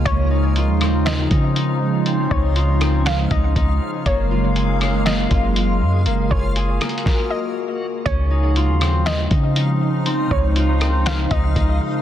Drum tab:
HH |x-----x--x--x--x--x-----|x-----x--x--x--x--x-----|x-----x--x--x--x--x-----|x-----x--xxx------------|
SD |---------r--o-----------|---------r--o-----------|---------r--o-----------|---------r--o-----------|
BD |o--------------o--------|---o-----------o--o-----|o--------------o--------|---o--------o-----------|

HH |x-----x--x--x--x--x-----|x-----x--x--x--x--x-----|
SD |---------r--o-----------|---------r--o-----------|
BD |o--------------o--------|---o-----------o--o-----|